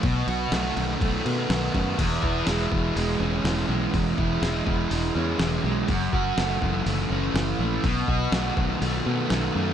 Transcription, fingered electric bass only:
\new Staff \with { instrumentName = "Fingered electric bass" } { \clef bass \time 4/4 \key e \major \tempo 4 = 123 b,,8 b,,8 b,,8 b,,8 b,,8 b,8 b,,8 fis,8 | e,,8 e,,8 e,,8 e,,8 e,,8 e,,8 e,,8 b,,8 | e,,8 e,,8 e,,8 e,,8 e,,8 e,8 e,,8 b,,8 | fis,,8 fis,,8 fis,,8 fis,,8 fis,,8 fis,,8 fis,,8 ais,,8 |
b,,8 b,,8 b,,8 b,,8 b,,8 b,8 b,,8 fis,8 | }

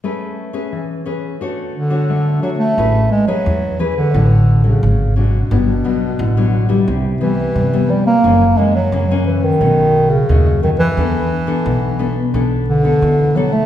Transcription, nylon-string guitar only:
\new Staff \with { instrumentName = "Nylon-string guitar" } { \time 4/4 \key a \major \tempo 4 = 88 << { <cis' gis' b'>8. <cis' gis' b'>8. <cis' gis' b'>8 <d' fis' cis''>8 r16 <d' fis' cis''>8. <d' fis' cis''>8 | <cis' gis' b'>8 r16 <cis' gis' b'>8. <cis' gis' b'>8 <fis cis' d'>8. <fis cis'>8. <fis cis' d'>16 r16 | <fis b d'>16 r16 <fis b d'>8. <fis b d'>8 <g b e'>8. <g b e'>8. <g b e'>8. | <e ais cis'>16 r16 <e ais cis'>16 r16 <e ais cis'>16 <e ais cis'>8. <fis a dis'>8. r16 <fis a dis'>16 r16 <fis a dis'>8 |
<b d' a'>8 r16 <b d' a'>8. <b d' a'>16 r16 <b d' a'>8. <b d' a'>8. <b d' a'>8 | } \\ { a4 e4 a4 a4 | a4 e4 a,4 r4 | g,4 d4 c4 g,4 | fis,4 cis4 b,4 fis,4 |
e4 b,4 e4 b,4 | } >> }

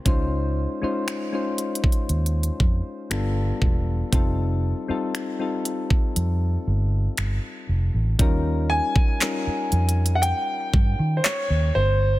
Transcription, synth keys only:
\new Staff \with { instrumentName = "Synth keys" } { \time 4/4 \key ees \mixolydian \tempo 4 = 59 <aes des' ees' f' c''>8 r16 <aes des' ees' f' c''>8 <aes des' ees' f' c''>4. r16 <g b d' f' a'>8. r16 | <g c' ees' f' a'>8 r16 <g c' ees' f' a'>8 <g c' ees' f' a'>4. r4 r16 | <g des' ees' f' bes'>8. r16 <g des' ees' f' bes'>4. r4. | }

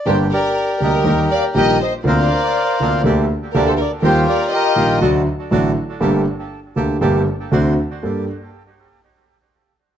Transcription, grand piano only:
\new Staff \with { instrumentName = "Grand piano" } { \clef bass \time 4/4 \key g \minor \tempo 4 = 121 <g,, g, d g bes g'>8 r4 <d, d g bes g'>8 <ees, ees g bes g'>8 r8 <bes,, bes, ees g bes g'>8 r8 | <d, d bes c' f'>8 r4 <d, d bes c' f'>8 <d, d a bes g'>8 r8 <d, d a bes g'>8 r8 | <ees, ees g bes f'>8 r4 <bes,, bes, ees g bes f'>8 <d, d fis a fis'>8 r8 <a,, a, d fis a fis'>8 r8 | <g,, g, d a bes g'>8 r4 <d, d a bes g'>8 <g,, g, d a bes g'>8 r8 <d, d a c' fis'>8 r8 |
<g, bes g' a'>8 r2. r8 | }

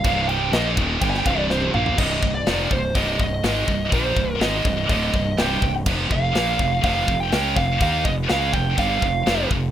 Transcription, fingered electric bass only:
\new Staff \with { instrumentName = "Fingered electric bass" } { \clef bass \time 4/4 \key c \minor \tempo 4 = 124 c,,4 bes,,8 ees,,8 g,,8 c,,4 bes,,8 | c,,8 c,,8 f,,8 c,,8 c,,8 c,,8 aes,,8 c,,8 | bes,,8 c,,8 aes,,8 c,,8 d,,8 c,,8 c,,8 c,,8 | f,,8 f,,8 bes,,8 f,,8 f,,8 f,,8 des,8 f,,8 |
ees,8 f,,8 des,8 f,,8 g,,8 f,,8 f,,8 f,,8 | }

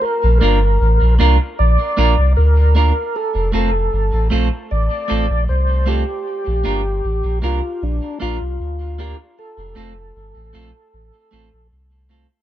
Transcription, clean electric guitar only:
\new Staff \with { instrumentName = "Clean electric guitar" } { \time 4/4 \key bes \major \tempo 4 = 77 r8 <bes d' f' bes'>8 r8 <bes d' f' bes'>8 r8 <bes d' f' bes'>8 r8 <bes d' f' bes'>8 | r8 <a c' f' a'>8 r8 <a c' f' a'>8 r8 <a c' f' a'>8 r8 <a c' f' a'>8 | r8 <bes d' f' bes'>8 r8 <bes d' f' bes'>8 r8 <bes d' f' bes'>8 r8 <bes d' f' bes'>8 | r8 <a c' f' a'>8 r8 <a c' f' a'>8 r8 <a c' f' a'>8 r8 <a c' f' a'>8 | }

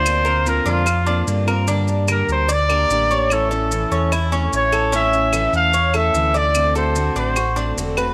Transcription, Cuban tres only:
\new Staff \with { instrumentName = "Cuban tres" } { \time 4/4 \key a \phrygian \tempo 4 = 148 d''8 bes'4 d'8 f'8 d'4 bes'8 | d'4 bes'4 d''8 bes'4 cis''8~ | cis''8 a'4 cis'8 e'8 cis'4 a'8 | cis'4 a'4 cis''8 a'4 d''8~ |
d''8 a'4 d'8 fis'8 d'4 b'8 | }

